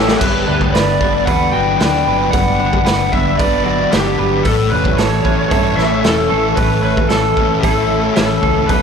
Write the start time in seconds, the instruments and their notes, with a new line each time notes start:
Already playing: fingered electric bass A1, overdriven electric guitar A2 E3 G3 C#4 G4, distorted electric guitar E3 A3, clean electric guitar E3 A3 C#4 G4, ambient pad G4 C#5 E5 A5, lead electric guitar A4
0.08 snare
0.19 fingered electric bass G1, distorted electric guitar G2, overdriven electric guitar G3, clean electric guitar B3, lead electric guitar B4, ambient pad D5 B5, kick, crash
0.47 fingered electric bass D2, distorted electric guitar D3, clean electric guitar D4, overdriven electric guitar D4
0.61 kick
0.73 fingered electric bass G1, distorted electric guitar D3, clean electric guitar B3, overdriven electric guitar B4, lead electric guitar D5, snare, open hi-hat
1.00 fingered electric bass G1, clean electric guitar B3, distorted electric guitar B3, overdriven electric guitar D4, kick
1.25 fingered electric bass E2, distorted electric guitar D4, clean electric guitar D4, overdriven electric guitar B4, lead electric guitar F#5, kick, open hi-hat
1.52 fingered electric bass G1, distorted electric guitar F#3, overdriven electric guitar F#4, lead electric guitar G5
1.79 fingered electric bass D2, distorted electric guitar D3, clean electric guitar D4, overdriven electric guitar D4, lead electric guitar G5, snare, open hi-hat
2.06 fingered electric bass G1, distorted electric guitar F#3, clean electric guitar B3, overdriven electric guitar B4
2.31 fingered electric bass G1, distorted electric guitar G2, clean electric guitar B3, lead electric guitar F#5, kick, open hi-hat
2.59 distorted electric guitar D3, overdriven electric guitar D4, clean electric guitar D4
2.73 kick
2.85 fingered electric bass G1, distorted electric guitar D3, clean electric guitar B3, overdriven electric guitar B4, lead electric guitar F#5, snare, open hi-hat
3.12 fingered electric bass G1, distorted electric guitar B3, clean electric guitar B3, overdriven electric guitar D4, lead electric guitar E5, kick
3.38 fingered electric bass G1, clean electric guitar D4, distorted electric guitar D4, overdriven electric guitar B4, lead electric guitar D5, kick, open hi-hat
3.65 distorted electric guitar F#3, overdriven electric guitar F#4, lead electric guitar D5
3.91 fingered electric bass G1, distorted electric guitar D3, clean electric guitar D4, overdriven electric guitar D4, lead electric guitar G4, snare, open hi-hat
4.18 fingered electric bass G1, distorted electric guitar F#3, clean electric guitar B3, overdriven electric guitar B4
4.44 fingered electric bass A1, overdriven electric guitar A2, distorted electric guitar A2, clean electric guitar E3, lead electric guitar A4, ambient pad A4 C#5 E5 C#6, kick, open hi-hat
4.71 fingered electric bass E1, distorted electric guitar E3, clean electric guitar A3, overdriven electric guitar C#4, lead electric guitar B4
4.85 kick
4.98 fingered electric bass A1, clean electric guitar E3, distorted electric guitar E3, overdriven electric guitar A4, lead electric guitar C#5, snare, open hi-hat
5.25 fingered electric bass A1, clean electric guitar E3, overdriven electric guitar C#4, distorted electric guitar C#4, kick
5.50 fingered electric bass G2, clean electric guitar A3, distorted electric guitar E4, overdriven electric guitar A4, lead electric guitar C#5, kick, open hi-hat
5.77 fingered electric bass A1, distorted electric guitar A3, clean electric guitar C#4, overdriven electric guitar E4, lead electric guitar E5, snare
6.04 fingered electric bass E1, distorted electric guitar E3, clean electric guitar A3, overdriven electric guitar C#4, lead electric guitar A4, snare, open hi-hat
6.30 fingered electric bass A1, clean electric guitar E3, distorted electric guitar A3, overdriven electric guitar A4
6.56 fingered electric bass A1, overdriven electric guitar A2, distorted electric guitar A2, clean electric guitar E3, lead electric guitar B4, ambient pad B5, kick, open hi-hat
6.83 distorted electric guitar E3, clean electric guitar A3, overdriven electric guitar C#4, lead electric guitar B4
6.97 kick
7.09 fingered electric bass A1, clean electric guitar E3, distorted electric guitar E3, lead electric guitar A4, overdriven electric guitar A4, snare, open hi-hat
7.37 fingered electric bass A1, clean electric guitar E3, overdriven electric guitar C#4, distorted electric guitar C#4, kick
7.61 fingered electric bass A1, clean electric guitar A3, distorted electric guitar E4, lead electric guitar A4, overdriven electric guitar A4, kick, open hi-hat
7.89 distorted electric guitar A3, clean electric guitar C#4, overdriven electric guitar E4
8.14 fingered electric bass A1, distorted electric guitar E3, clean electric guitar A3, overdriven electric guitar C#4, lead electric guitar A4, snare, open hi-hat
8.42 fingered electric bass C#2, clean electric guitar E3, distorted electric guitar A3, overdriven electric guitar A4, kick
8.67 fingered electric bass D2, distorted electric guitar D3, overdriven electric guitar D3, clean electric guitar F#3, lead electric guitar B4, ambient pad C#5 A5 C#6, kick, open hi-hat